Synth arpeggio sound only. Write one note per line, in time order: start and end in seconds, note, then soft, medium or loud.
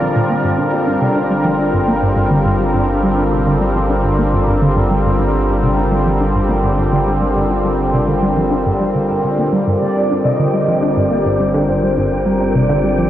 0.01 0.08 F3 medium
0.15 0.20 A#2 medium
0.30 0.37 A#3 medium
0.44 0.52 G2 medium
0.58 0.63 D4 medium
0.73 0.80 G3 medium
0.87 0.99 D4 medium
1.02 1.13 C3 medium
1.16 1.24 D3 loud
1.30 1.35 G3 medium
1.45 1.52 F3 medium
1.59 1.67 D4 medium
1.73 1.78 G2 medium
1.88 1.96 A#3 medium
2.02 2.14 G2 medium
2.17 2.24 G2 medium
2.31 2.39 D3 loud
2.45 2.50 G2 medium
2.60 2.72 G3 medium
2.74 2.82 G2 medium
2.89 2.93 D4 medium
3.03 3.11 G3 medium
3.18 3.29 D4 medium
3.32 3.44 C3 medium
3.47 3.54 D3 medium
3.61 3.66 G3 medium
3.75 3.83 F3 medium
3.90 3.98 D4 medium
4.04 4.09 G2 medium
4.19 4.27 A#3 medium
4.33 4.45 G2 medium
4.48 4.55 G2 medium
4.62 4.70 D3 loud
4.76 4.81 G2 loud
4.91 5.02 G3 medium
5.05 5.13 G2 medium
5.20 5.24 D4 medium
5.34 5.42 G3 medium
5.48 5.60 D4 medium
5.63 5.75 C3 medium
5.77 5.85 D3 loud
5.92 5.96 G3 medium
6.06 6.14 F3 medium
6.20 6.28 D4 medium
6.35 6.40 G2 medium
6.49 6.57 A#3 medium
6.64 6.75 G2 medium
6.78 6.86 G2 medium
6.92 7.00 D3 loud
7.07 7.12 G2 loud
7.21 7.33 G3 medium
7.36 7.44 G2 medium
7.50 7.55 D4 medium
7.65 7.73 G3 medium
7.79 7.91 D4 medium
7.94 8.05 C3 medium
8.08 8.16 D3 medium
8.23 8.27 G3 medium
8.37 8.45 F3 medium
8.52 8.59 D4 medium
8.66 8.71 G2 medium
8.81 8.85 G3 medium
8.95 8.99 D3 medium
9.10 9.17 D4 medium
9.24 9.31 D3 medium
9.38 9.46 A#2 loud
9.53 9.60 G3 medium
9.67 9.75 G2 medium
9.82 9.89 D3 medium
9.96 10.04 G3 medium
10.11 10.22 D4 medium
10.25 10.36 C3 medium
10.39 10.47 D3 loud
10.54 10.58 G3 medium
10.68 10.76 F3 medium
10.82 10.90 D4 medium
10.97 11.01 G2 medium
11.11 11.19 A#3 medium
11.26 11.37 G2 medium
11.40 11.48 G2 medium
11.55 11.62 D3 loud
11.69 11.73 G2 loud
11.83 11.95 G3 medium
11.98 12.05 G2 medium
12.12 12.20 D3 medium
12.26 12.34 G3 medium
12.41 12.52 D4 medium
12.55 12.67 C3 medium
12.70 12.77 D3 loud
12.84 12.89 G3 medium
12.99 13.06 F3 medium